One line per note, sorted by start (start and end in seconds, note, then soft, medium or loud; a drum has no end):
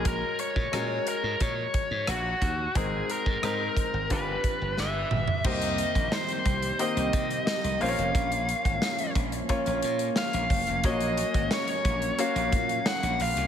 0.00 0.22 A#1 medium
0.00 0.65 G#3 medium
0.00 0.65 C#4 medium
0.00 0.66 F#4 medium
0.00 0.66 A#4 medium
0.05 0.40 A#4 medium
0.05 kick loud
0.05 closed hi-hat medium
0.39 1.08 C#5 medium
0.39 closed hi-hat medium
0.56 0.69 A#2 medium
0.56 kick medium
0.72 0.98 A#2 medium
0.72 1.97 G#3 medium
0.72 1.97 C#4 medium
0.72 1.98 F#4 medium
0.72 1.98 A#4 medium
0.72 cross-stick loud
0.72 closed hi-hat medium
1.07 1.42 A#4 medium
1.07 closed hi-hat medium
1.23 1.36 G#2 medium
1.40 1.66 A#2 loud
1.40 2.11 C#5 loud
1.40 kick medium
1.40 closed hi-hat medium
1.74 kick medium
1.74 closed hi-hat medium
1.91 2.09 G#2 medium
2.07 2.33 A#1 medium
2.07 2.76 F#4 medium
2.07 cross-stick loud
2.07 closed hi-hat medium
2.42 2.67 D#2 medium
2.42 kick medium
2.42 closed hi-hat medium
2.75 3.01 G#1 loud
2.75 3.37 G#3 medium
2.75 3.38 C4 medium
2.75 3.38 D#4 medium
2.75 3.11 G#4 medium
2.75 3.38 A#4 medium
2.75 kick loud
2.75 closed hi-hat medium
3.10 3.44 A#4 medium
3.10 closed hi-hat medium
3.26 3.39 G#2 medium
3.26 kick medium
3.42 3.68 G#2 medium
3.42 4.10 G#3 medium
3.42 4.10 C4 medium
3.42 4.10 D#4 medium
3.42 4.10 A#4 medium
3.42 4.12 A#4 medium
3.42 cross-stick loud
3.42 closed hi-hat medium
3.77 kick medium
3.77 closed hi-hat medium
3.94 4.06 G#1 medium
4.10 4.36 G1 loud
4.10 5.35 G3 medium
4.10 5.35 D4 medium
4.10 5.35 F4 medium
4.10 5.35 B4 medium
4.10 5.08 B4 medium
4.10 kick medium
4.10 closed hi-hat medium
4.44 muted slap bass stroke soft
4.44 kick medium
4.44 closed hi-hat medium
4.62 4.74 G1 medium
4.77 5.03 G1 medium
4.77 5.46 E5 medium
4.77 snare soft
5.11 5.24 G1 medium
5.11 mid tom medium
5.28 floor tom medium
5.44 5.83 C2 loud
5.44 7.78 D#3 medium
5.44 7.78 G3 medium
5.44 6.69 A#3 medium
5.44 13.47 A#3 medium
5.44 7.78 C4 medium
5.44 6.70 D#4 medium
5.44 7.78 G4 medium
5.44 6.70 G4 medium
5.44 6.70 C5 medium
5.44 6.15 D#5 loud
5.44 kick loud
5.44 crash medium
5.62 closed hi-hat medium
5.78 closed hi-hat medium
5.95 6.08 A#1 medium
5.95 kick medium
5.95 closed hi-hat soft
6.12 6.82 C5 medium
6.12 snare loud
6.29 closed hi-hat medium
6.46 6.71 C2 medium
6.46 kick medium
6.46 closed hi-hat medium
6.62 closed hi-hat medium
6.79 7.79 A#3 medium
6.79 7.81 D#4 medium
6.79 7.81 G4 medium
6.79 7.80 C5 medium
6.79 7.46 D#5 medium
6.79 closed hi-hat medium
6.97 7.09 C2 medium
6.97 closed hi-hat soft
7.13 7.39 C3 medium
7.13 kick loud
7.13 closed hi-hat medium
7.31 closed hi-hat soft
7.47 7.82 D#5 medium
7.47 snare loud
7.64 7.77 C2 medium
7.64 closed hi-hat soft
7.80 7.94 A#1 medium
7.80 10.81 F3 medium
7.80 9.05 A#3 medium
7.80 10.81 C#4 medium
7.80 9.06 C#4 medium
7.80 9.06 F4 medium
7.80 7.88 C5 medium
7.80 9.12 F5 medium
7.80 open hi-hat medium
7.88 9.09 C#5 medium
7.98 8.11 F1 medium
7.98 closed hi-hat medium
8.15 8.53 A#1 loud
8.15 kick loud
8.15 closed hi-hat medium
8.32 closed hi-hat medium
8.49 closed hi-hat medium
8.65 8.78 G#1 medium
8.65 kick medium
8.65 closed hi-hat soft
8.82 snare loud
8.99 closed hi-hat medium
9.15 9.41 A#1 medium
9.15 kick medium
9.15 closed hi-hat medium
9.32 closed hi-hat medium
9.49 10.74 A#3 medium
9.49 10.74 C#4 medium
9.49 10.74 F4 medium
9.49 10.74 C#5 medium
9.49 kick medium
9.49 closed hi-hat medium
9.66 9.79 A#1 loud
9.66 closed hi-hat soft
9.82 10.09 A#2 medium
9.82 closed hi-hat medium
9.99 closed hi-hat medium
10.16 10.85 F5 medium
10.16 snare loud
10.33 10.46 A#1 medium
10.33 closed hi-hat soft
10.50 10.63 F#1 medium
10.50 kick medium
10.50 open hi-hat medium
10.67 10.80 F1 medium
10.67 closed hi-hat soft
10.84 11.22 A#1 loud
10.84 13.47 F#3 medium
10.84 12.09 A#3 medium
10.84 13.47 C#4 medium
10.84 12.09 C#4 medium
10.84 12.09 F#4 medium
10.84 12.09 C#5 medium
10.84 11.48 D#5 loud
10.84 kick loud
10.84 closed hi-hat medium
11.01 closed hi-hat medium
11.17 closed hi-hat medium
11.34 11.47 G#1 medium
11.34 kick medium
11.34 closed hi-hat soft
11.51 12.22 C#5 medium
11.51 snare loud
11.68 closed hi-hat medium
11.85 12.10 A#1 medium
11.85 kick loud
11.85 closed hi-hat medium
12.02 closed hi-hat medium
12.18 13.43 A#3 medium
12.18 13.44 C#4 medium
12.18 13.44 F#4 medium
12.18 13.44 C#5 medium
12.18 12.87 F5 loud
12.18 closed hi-hat medium
12.36 12.54 A#1 loud
12.36 closed hi-hat medium
12.53 12.78 A#2 medium
12.53 kick loud
12.53 closed hi-hat medium
12.69 closed hi-hat medium
12.86 13.21 F#5 loud
12.86 snare loud
13.03 13.16 A#1 medium
13.03 closed hi-hat soft
13.20 13.33 A#1 medium
13.20 13.47 F5 loud
13.20 open hi-hat medium
13.37 13.47 C2 medium
13.37 closed hi-hat soft